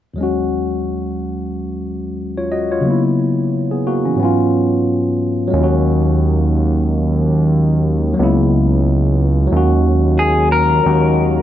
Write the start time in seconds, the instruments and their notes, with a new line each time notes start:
0.14 tine electric piano D#2 F#3
0.18 tine electric piano G#3 C#4
0.23 tine electric piano F#4
2.38 tine electric piano F4 C#5
2.52 tine electric piano F#4 D#5
2.72 tine electric piano F4 C#5
2.81 tine electric piano C#3 F#3
2.86 tine electric piano A#3 B3
2.90 tine electric piano E4
3.71 tine electric piano B3 G#4
3.87 tine electric piano A#3 F#4
4.05 tine electric piano E3 C#4
4.15 tine electric piano G#2 F#3
4.20 tine electric piano B3 C#4
4.25 tine electric piano F4
5.47 tine electric piano F#3 G#3
5.53 analog synth bass D#2, tine electric piano C#4 F4
5.64 tine electric piano F#4
8.14 tine electric piano F#3 A#3
8.19 analog synth bass C#2, tine electric piano B3 E4
9.47 tine electric piano F#3 G#3
9.52 analog synth bass D#2, tine electric piano C#4
9.57 tine electric piano F#4
10.19 clean electric guitar G#4
10.52 clean electric guitar A#4
10.83 analog synth bass D#2, tine electric piano F#3 G#3 C#4
10.88 tine electric piano F#4